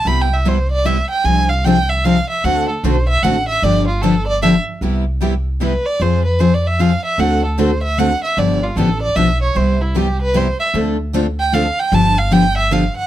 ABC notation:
X:1
M:3/4
L:1/8
Q:"Swing" 1/4=152
K:C
V:1 name="Violin"
(3b g e c d e g | _a f g e f e | ^f A c e f e | d F A d e z |
z4 B d | c B (3c d e f e | ^f A c e f e | d F A d e _d |
c E G B c e | z3 g f g | a f g e f ^f |]
V:2 name="Steel-string acoustic guitar"
[C,G,B,EG] z [C,G,B,EG] z [C,G,B,EG] z | [C,F,CD_A] z [C,F,CDA] z [C,F,CDA] z | [D,A,C^FA] z [D,A,CFA] z [D,A,CFA] z | [D,F,B,DG] z [D,F,B,DG] z [D,F,B,DG] z |
[C,G,B,EG] z [C,G,B,EG] z [C,G,B,EG] z | [F,CF_A] z [F,CFA] z [F,CFA] z | [D,A,C^FA] z [D,A,CFA] z [D,A,CFA] z | [D,F,B,DG] z [D,F,B,DG] z [D,F,B,DG] z |
[C,G,B,EG] z [C,G,B,EG] z [C,G,B,EG] z | [D,A,CFA] z [D,A,CFA] z [D,A,CFA] z | [D,F,B,DG] z [D,F,B,DG] z [D,F,B,DG] z |]
V:3 name="Steel-string acoustic guitar"
[C,G,B,EG] z [C,G,B,EG] z [C,G,B,EG] z | [C,F,CD_A] z [C,F,CDA] z [C,F,CDA] z | [D,A,C^FA] z [D,A,CFA] z [D,A,CFA] z | [D,F,B,DG] z [D,F,B,DG] z [D,F,B,DG] z |
[C,G,B,EG] z [C,G,B,EG] z [C,G,B,EG] z | [F,CF_A] z [F,CFA] z [F,CFA] z | [D,A,C^FA] z [D,A,CFA] z [D,A,CFA] z | [D,F,B,DG] z [D,F,B,DG] z [D,F,B,DG] z |
[C,G,B,EG] z [C,G,B,EG] z [C,G,B,EG] z | [D,F,CDA] z [D,F,CDA] z [D,F,CDA] z | [D,F,B,DG] z [D,F,B,DG] z [D,F,B,DG] z |]
V:4 name="Upright bass" clef=bass
C,,6 | C,,6 | D,,2 B,,,2 A,,,2 | G,,,6 |
C,,6 | F,,6 | D,,6 | G,,,2 A,,,2 B,,,2 |
C,,6 | D,,6 | G,,,6 |]